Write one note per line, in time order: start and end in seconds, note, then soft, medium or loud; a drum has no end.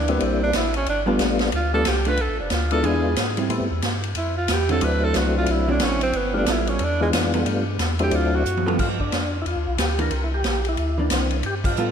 0.00 0.20 D2 medium
0.08 0.51 G3 medium
0.08 0.51 A#3 medium
0.08 0.26 B3 medium
0.08 0.51 C4 medium
0.08 0.51 D4 medium
0.08 0.51 E4 medium
0.08 ride soft
0.20 0.53 A#1 medium
0.20 0.42 C4 medium
0.20 ride medium
0.43 0.58 D4 loud
0.53 0.86 A1 medium
0.53 0.76 E4 medium
0.53 snare medium
0.53 hi-hat pedal medium
0.53 ride medium
0.74 0.87 C#4 medium
0.74 ride soft
0.86 1.18 G1 medium
0.86 1.01 D4 medium
0.86 ride medium
1.06 1.18 G3 medium
1.06 1.50 G3 medium
1.06 1.50 A3 medium
1.06 1.18 B3 medium
1.06 1.50 B3 medium
1.06 1.50 D4 medium
1.06 1.18 F4 medium
1.06 1.50 F4 medium
1.06 1.19 A4 medium
1.19 1.52 A1 medium
1.19 snare medium
1.19 hi-hat pedal soft
1.19 ride medium
1.39 snare medium
1.39 ride soft
1.52 1.85 D2 medium
1.52 1.73 F4 medium
1.52 ride medium
1.73 1.84 G3 medium
1.73 1.84 A3 medium
1.73 1.85 B3 medium
1.73 1.85 D4 medium
1.73 1.85 F4 medium
1.73 1.90 A4 loud
1.85 2.18 C2 medium
1.85 2.09 G4 medium
1.85 snare medium
1.85 hi-hat pedal medium
1.85 ride medium
2.05 2.17 A3 medium
2.05 2.17 D4 medium
2.05 2.18 F4 medium
2.05 2.22 B4 loud
2.05 ride soft
2.17 2.29 B1 medium
2.17 2.39 A4 medium
2.17 ride soft
2.29 2.40 A1 medium
2.40 2.51 F1 medium
2.40 2.55 D4 medium
2.50 2.83 D2 medium
2.50 2.72 F4 medium
2.50 snare medium
2.50 hi-hat pedal medium
2.50 ride medium
2.71 3.15 G#3 medium
2.71 3.15 B3 medium
2.71 3.15 D4 medium
2.71 3.15 E4 medium
2.71 3.15 F4 medium
2.71 2.87 A4 loud
2.71 ride soft
2.83 3.16 E2 medium
2.83 3.02 E3 medium
2.83 3.02 G#3 medium
2.83 3.02 D4 medium
2.83 3.03 F4 medium
2.83 3.18 G#4 medium
2.83 ride medium
3.16 3.49 G#2 medium
3.16 snare medium
3.16 hi-hat pedal medium
3.16 ride medium
3.37 3.49 G3 medium
3.37 3.49 C4 medium
3.37 3.49 E4 medium
3.37 ride soft
3.49 3.60 A2 medium
3.49 3.68 G3 medium
3.49 3.69 A3 soft
3.49 3.69 B3 soft
3.49 3.69 C4 soft
3.49 3.69 E4 medium
3.49 ride medium
3.60 3.72 G2 soft
3.71 3.82 E2 medium
3.82 4.15 G2 medium
3.82 snare medium
3.82 hi-hat pedal medium
3.82 ride medium
4.03 ride soft
4.15 4.48 F2 medium
4.15 4.36 E4 medium
4.15 ride medium
4.37 4.54 F4 medium
4.48 4.81 E2 medium
4.48 snare medium
4.48 hi-hat pedal medium
4.48 ride medium
4.52 4.71 G4 medium
4.69 4.81 D3 medium
4.69 4.81 F#3 medium
4.69 4.81 C4 medium
4.69 4.81 E4 medium
4.69 4.85 A4 medium
4.69 ride soft
4.81 5.14 D2 medium
4.81 5.73 F#3 medium
4.81 5.73 A3 medium
4.81 5.73 C4 medium
4.81 5.73 D4 medium
4.81 5.73 E4 medium
4.81 5.05 B4 medium
4.81 ride medium
5.04 5.18 A4 loud
5.14 5.47 C2 medium
5.14 5.37 F#4 medium
5.14 snare medium
5.14 hi-hat pedal medium
5.14 ride medium
5.38 5.52 F4 medium
5.46 5.80 B1 medium
5.46 ride medium
5.51 5.70 E4 medium
5.68 6.11 D3 medium
5.68 6.12 F#3 medium
5.68 6.12 C4 medium
5.68 5.86 D4 medium
5.68 6.12 E4 medium
5.80 6.13 A1 medium
5.80 snare medium
5.80 hi-hat pedal medium
5.80 ride medium
5.84 6.02 C#4 medium
6.01 6.18 C4 loud
6.01 ride soft
6.13 6.46 G1 medium
6.13 6.36 B3 medium
6.13 ride medium
6.33 6.45 G3 medium
6.33 6.46 A3 medium
6.33 6.46 B3 medium
6.33 6.46 D4 medium
6.33 6.53 D4 medium
6.33 6.46 F4 medium
6.46 6.79 A1 loud
6.46 6.80 G3 medium
6.46 6.81 B3 medium
6.46 6.81 F4 medium
6.46 6.81 A4 medium
6.46 snare medium
6.46 hi-hat pedal medium
6.46 ride medium
6.51 6.71 E4 medium
6.67 6.86 C#4 medium
6.67 ride soft
6.79 7.12 E2 medium
6.79 ride medium
6.85 7.02 D4 loud
7.00 7.44 E3 medium
7.00 7.44 G#3 medium
7.00 7.09 G#3 medium
7.00 7.44 B3 medium
7.00 7.44 D4 medium
7.00 7.44 F4 medium
7.13 7.46 F2 medium
7.13 snare medium
7.13 hi-hat pedal medium
7.13 ride medium
7.34 7.45 G3 medium
7.34 7.45 B3 medium
7.34 7.46 F4 medium
7.34 7.46 A4 medium
7.34 ride soft
7.45 7.78 G2 medium
7.45 7.64 G3 medium
7.45 7.65 A3 medium
7.45 7.65 B3 medium
7.45 7.65 D4 medium
7.45 7.65 F4 medium
7.45 ride medium
7.79 8.11 E2 medium
7.79 snare medium
7.79 hi-hat pedal soft
7.79 ride medium
7.99 8.43 F#3 medium
7.99 8.43 A3 medium
7.99 8.43 C4 medium
7.99 8.43 D4 medium
7.99 8.43 E4 medium
7.99 8.17 G4 medium
7.99 ride soft
8.11 8.45 D2 medium
8.11 ride medium
8.16 8.37 F4 medium
8.35 8.67 F#4 medium
8.45 8.78 F#2 medium
8.45 hi-hat pedal medium
8.57 high tom medium
8.66 8.77 G3 medium
8.66 8.78 B3 medium
8.66 8.78 F4 medium
8.66 8.78 A4 medium
8.66 high tom medium
8.79 9.11 G2 medium
8.79 8.89 F4 loud
8.79 kick medium
8.79 crash medium
9.00 9.38 D4 medium
9.00 kick soft
9.12 9.44 F2 medium
9.12 snare medium
9.12 hi-hat pedal soft
9.12 ride medium
9.42 9.56 E2 medium
9.42 9.46 E4 medium
9.46 9.77 F4 medium
9.46 ride soft
9.56 9.67 D2 soft
9.67 9.77 B1 medium
9.78 10.10 D2 medium
9.78 10.00 G4 loud
9.78 snare medium
9.78 hi-hat pedal medium
9.78 ride medium
9.99 10.10 E3 medium
9.99 10.10 A#3 medium
9.99 10.10 D4 medium
9.99 10.25 A#4 medium
9.99 ride soft
10.10 10.43 C2 medium
10.10 ride medium
10.24 10.32 E4 medium
10.34 10.67 G4 medium
10.44 10.76 A#1 medium
10.44 snare medium
10.44 hi-hat pedal soft
10.44 ride medium
10.65 ride soft
10.69 10.98 E4 medium
10.77 11.10 D2 medium
10.77 ride soft
10.98 11.41 E3 medium
10.98 11.42 A#3 medium
10.98 11.42 D4 medium
10.98 11.05 D4 medium
11.10 11.43 C2 medium
11.10 11.37 C4 medium
11.10 snare medium
11.10 hi-hat pedal medium
11.10 ride medium
11.30 ride soft
11.43 11.75 G2 medium
11.43 11.55 G4 loud
11.43 ride soft
11.64 11.91 F4 medium
11.64 kick medium
11.64 crash medium
11.76 11.91 A2 medium
11.76 11.91 G3 soft
11.76 11.91 B3 medium
11.76 11.91 F4 medium
11.76 11.91 A4 medium
11.76 hi-hat pedal soft